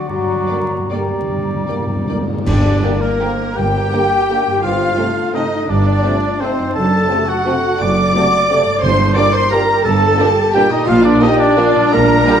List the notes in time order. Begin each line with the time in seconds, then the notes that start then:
Already playing: D3 A3 D4 F#4 C5 D5 F#5
0.00 C4
0.09 G2 F#3 F#4 D5 A#5
0.18 G2 D3
0.26 G2 A#3
0.35 G2
0.39 D4
0.43 G2
0.48 G2 D3 A#3 G4 D5 G5
0.60 G2 A#4
0.70 G2 D5
0.79 G2 G5
0.88 G2 D3 G3 A#3 G4 A#4 D5 G5 A#5
0.96 G2
1.01 D4
1.05 G2
1.11 G2 D3
1.20 G2 A#3
1.29 G2
1.37 G2 D3
1.45 G2 A#3
1.54 G2
1.58 G2 D4
1.68 G2 D3 A#3 G4 D5 G5
1.78 G2 A#4
1.87 G2 D5
1.96 G2 G5
2.05 G2 D3 A#3 D5
2.09 G2 A#4 G5
2.19 G2 D4
2.29 G2 D3
2.33 G2 A#3
2.38 A#3 D4
2.42 G4
2.46 G1 G2 D4 G4 D5, concert bass drum, crash
2.82 D3 A#3 G4 A#4
3.01 A#3 A#4
3.20 D3 A#3 G4 C5
3.56 G1 G2 G4 A#4 G5
3.92 D3 A#3 G4
4.30 D3 A#3 G4 A#4
4.46 G2
4.51 C4
4.55 D#4
4.60 F4 A4 F5
4.64 G1 G2 F4 C5
4.97 C3 A3 C4 A4
5.33 C3 A3 C4 D#4 D#5
5.68 G1 G2 D4 G4 D5
6.04 C3 A3 C4 F4
6.41 C3 A3 C4 D#4 C5
6.58 F#2
6.62 C4
6.67 D4
6.71 A4 A5
6.76 F#1 F#2 D4 A4 A5
7.10 C3 A3 C4 F#4
7.27 F#4 F#5
7.46 C3 A3 C4 A4
7.81 F#1 F#2 D5 D6
8.14 C3 A3 C4 F#4
8.50 C3 A3 C4 A4
8.65 G2
8.70 A#3
8.74 D4
8.79 C5 D5 C6
8.83 G1 G2 C6
9.15 A#2 G3 A#3 D4 A#4 D5 D6
9.33 C5 C6
9.51 A#2 G3 A#3 D4 G4 A#4 A#5
9.84 G1 G2 A4 A5
10.18 A#2 G3 A#3 D4 G4
10.53 A#2 G3 A#3 D4 G4 G5
10.70 A#2 D#4 D#5
10.74 A#3
10.78 D4
10.83 D5
10.87 A#1 A#2 F4 F5
11.04 D4 D5
11.21 A#2 F3 A#3 D4 D#4 G4 D#5
11.39 D4 D5
11.56 A#2 F3 A#3 D4 F4
11.76 A#2
11.80 G3
11.84 D4
11.89 D5 A#5
11.93 A#1 A#2 D4 A#4 A#5
12.26 A#2 G3 D4 G4